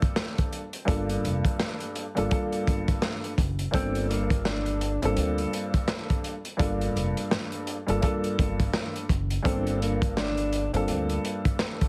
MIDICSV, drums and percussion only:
0, 0, Header, 1, 2, 480
1, 0, Start_track
1, 0, Key_signature, -2, "minor"
1, 0, Tempo, 714286
1, 592, Time_signature, 4, 2, 24, 8
1, 7985, End_track
2, 0, Start_track
2, 0, Title_t, "Drums"
2, 15, Note_on_c, 9, 42, 50
2, 16, Note_on_c, 9, 36, 92
2, 82, Note_off_c, 9, 42, 0
2, 83, Note_off_c, 9, 36, 0
2, 108, Note_on_c, 9, 38, 113
2, 175, Note_off_c, 9, 38, 0
2, 256, Note_on_c, 9, 42, 54
2, 259, Note_on_c, 9, 36, 96
2, 323, Note_off_c, 9, 42, 0
2, 326, Note_off_c, 9, 36, 0
2, 353, Note_on_c, 9, 42, 70
2, 420, Note_off_c, 9, 42, 0
2, 491, Note_on_c, 9, 42, 57
2, 558, Note_off_c, 9, 42, 0
2, 590, Note_on_c, 9, 36, 111
2, 595, Note_on_c, 9, 42, 102
2, 658, Note_off_c, 9, 36, 0
2, 662, Note_off_c, 9, 42, 0
2, 735, Note_on_c, 9, 42, 57
2, 802, Note_off_c, 9, 42, 0
2, 839, Note_on_c, 9, 42, 76
2, 906, Note_off_c, 9, 42, 0
2, 972, Note_on_c, 9, 36, 96
2, 976, Note_on_c, 9, 42, 59
2, 1039, Note_off_c, 9, 36, 0
2, 1044, Note_off_c, 9, 42, 0
2, 1072, Note_on_c, 9, 38, 105
2, 1139, Note_off_c, 9, 38, 0
2, 1211, Note_on_c, 9, 42, 47
2, 1279, Note_off_c, 9, 42, 0
2, 1313, Note_on_c, 9, 42, 76
2, 1381, Note_off_c, 9, 42, 0
2, 1457, Note_on_c, 9, 42, 53
2, 1524, Note_off_c, 9, 42, 0
2, 1552, Note_on_c, 9, 42, 80
2, 1555, Note_on_c, 9, 36, 93
2, 1619, Note_off_c, 9, 42, 0
2, 1622, Note_off_c, 9, 36, 0
2, 1696, Note_on_c, 9, 42, 47
2, 1764, Note_off_c, 9, 42, 0
2, 1797, Note_on_c, 9, 36, 89
2, 1798, Note_on_c, 9, 42, 72
2, 1864, Note_off_c, 9, 36, 0
2, 1866, Note_off_c, 9, 42, 0
2, 1936, Note_on_c, 9, 42, 52
2, 1937, Note_on_c, 9, 36, 94
2, 2003, Note_off_c, 9, 42, 0
2, 2004, Note_off_c, 9, 36, 0
2, 2030, Note_on_c, 9, 38, 114
2, 2097, Note_off_c, 9, 38, 0
2, 2177, Note_on_c, 9, 42, 52
2, 2244, Note_off_c, 9, 42, 0
2, 2271, Note_on_c, 9, 36, 85
2, 2273, Note_on_c, 9, 42, 73
2, 2338, Note_off_c, 9, 36, 0
2, 2340, Note_off_c, 9, 42, 0
2, 2411, Note_on_c, 9, 42, 57
2, 2478, Note_off_c, 9, 42, 0
2, 2511, Note_on_c, 9, 36, 105
2, 2515, Note_on_c, 9, 42, 103
2, 2578, Note_off_c, 9, 36, 0
2, 2583, Note_off_c, 9, 42, 0
2, 2655, Note_on_c, 9, 42, 55
2, 2722, Note_off_c, 9, 42, 0
2, 2759, Note_on_c, 9, 42, 75
2, 2826, Note_off_c, 9, 42, 0
2, 2892, Note_on_c, 9, 36, 94
2, 2896, Note_on_c, 9, 42, 60
2, 2959, Note_off_c, 9, 36, 0
2, 2963, Note_off_c, 9, 42, 0
2, 2992, Note_on_c, 9, 38, 106
2, 3059, Note_off_c, 9, 38, 0
2, 3131, Note_on_c, 9, 42, 45
2, 3198, Note_off_c, 9, 42, 0
2, 3233, Note_on_c, 9, 42, 75
2, 3300, Note_off_c, 9, 42, 0
2, 3376, Note_on_c, 9, 42, 53
2, 3443, Note_off_c, 9, 42, 0
2, 3471, Note_on_c, 9, 42, 84
2, 3539, Note_off_c, 9, 42, 0
2, 3616, Note_on_c, 9, 42, 48
2, 3683, Note_off_c, 9, 42, 0
2, 3718, Note_on_c, 9, 42, 69
2, 3786, Note_off_c, 9, 42, 0
2, 3856, Note_on_c, 9, 42, 50
2, 3857, Note_on_c, 9, 36, 90
2, 3923, Note_off_c, 9, 42, 0
2, 3924, Note_off_c, 9, 36, 0
2, 3950, Note_on_c, 9, 38, 110
2, 4017, Note_off_c, 9, 38, 0
2, 4098, Note_on_c, 9, 42, 52
2, 4100, Note_on_c, 9, 36, 97
2, 4165, Note_off_c, 9, 42, 0
2, 4167, Note_off_c, 9, 36, 0
2, 4195, Note_on_c, 9, 42, 73
2, 4262, Note_off_c, 9, 42, 0
2, 4334, Note_on_c, 9, 42, 59
2, 4401, Note_off_c, 9, 42, 0
2, 4432, Note_on_c, 9, 36, 111
2, 4438, Note_on_c, 9, 42, 104
2, 4499, Note_off_c, 9, 36, 0
2, 4505, Note_off_c, 9, 42, 0
2, 4578, Note_on_c, 9, 42, 57
2, 4645, Note_off_c, 9, 42, 0
2, 4681, Note_on_c, 9, 42, 76
2, 4748, Note_off_c, 9, 42, 0
2, 4819, Note_on_c, 9, 42, 60
2, 4886, Note_off_c, 9, 42, 0
2, 4915, Note_on_c, 9, 38, 103
2, 4982, Note_off_c, 9, 38, 0
2, 5053, Note_on_c, 9, 42, 46
2, 5120, Note_off_c, 9, 42, 0
2, 5154, Note_on_c, 9, 42, 77
2, 5222, Note_off_c, 9, 42, 0
2, 5297, Note_on_c, 9, 42, 53
2, 5365, Note_off_c, 9, 42, 0
2, 5392, Note_on_c, 9, 42, 83
2, 5395, Note_on_c, 9, 36, 93
2, 5459, Note_off_c, 9, 42, 0
2, 5463, Note_off_c, 9, 36, 0
2, 5536, Note_on_c, 9, 42, 49
2, 5603, Note_off_c, 9, 42, 0
2, 5637, Note_on_c, 9, 36, 91
2, 5639, Note_on_c, 9, 42, 73
2, 5705, Note_off_c, 9, 36, 0
2, 5706, Note_off_c, 9, 42, 0
2, 5777, Note_on_c, 9, 36, 92
2, 5777, Note_on_c, 9, 42, 51
2, 5844, Note_off_c, 9, 36, 0
2, 5844, Note_off_c, 9, 42, 0
2, 5870, Note_on_c, 9, 38, 112
2, 5937, Note_off_c, 9, 38, 0
2, 6018, Note_on_c, 9, 42, 53
2, 6085, Note_off_c, 9, 42, 0
2, 6111, Note_on_c, 9, 36, 83
2, 6114, Note_on_c, 9, 42, 71
2, 6178, Note_off_c, 9, 36, 0
2, 6182, Note_off_c, 9, 42, 0
2, 6252, Note_on_c, 9, 42, 61
2, 6320, Note_off_c, 9, 42, 0
2, 6351, Note_on_c, 9, 36, 112
2, 6357, Note_on_c, 9, 42, 103
2, 6418, Note_off_c, 9, 36, 0
2, 6424, Note_off_c, 9, 42, 0
2, 6496, Note_on_c, 9, 42, 58
2, 6563, Note_off_c, 9, 42, 0
2, 6600, Note_on_c, 9, 42, 74
2, 6667, Note_off_c, 9, 42, 0
2, 6732, Note_on_c, 9, 36, 96
2, 6737, Note_on_c, 9, 42, 59
2, 6800, Note_off_c, 9, 36, 0
2, 6805, Note_off_c, 9, 42, 0
2, 6834, Note_on_c, 9, 38, 104
2, 6901, Note_off_c, 9, 38, 0
2, 6972, Note_on_c, 9, 42, 46
2, 7039, Note_off_c, 9, 42, 0
2, 7073, Note_on_c, 9, 42, 77
2, 7140, Note_off_c, 9, 42, 0
2, 7217, Note_on_c, 9, 42, 52
2, 7284, Note_off_c, 9, 42, 0
2, 7311, Note_on_c, 9, 42, 83
2, 7378, Note_off_c, 9, 42, 0
2, 7455, Note_on_c, 9, 42, 50
2, 7522, Note_off_c, 9, 42, 0
2, 7558, Note_on_c, 9, 42, 72
2, 7625, Note_off_c, 9, 42, 0
2, 7695, Note_on_c, 9, 42, 52
2, 7696, Note_on_c, 9, 36, 92
2, 7762, Note_off_c, 9, 42, 0
2, 7763, Note_off_c, 9, 36, 0
2, 7789, Note_on_c, 9, 38, 114
2, 7856, Note_off_c, 9, 38, 0
2, 7938, Note_on_c, 9, 42, 54
2, 7939, Note_on_c, 9, 36, 94
2, 7985, Note_off_c, 9, 36, 0
2, 7985, Note_off_c, 9, 42, 0
2, 7985, End_track
0, 0, End_of_file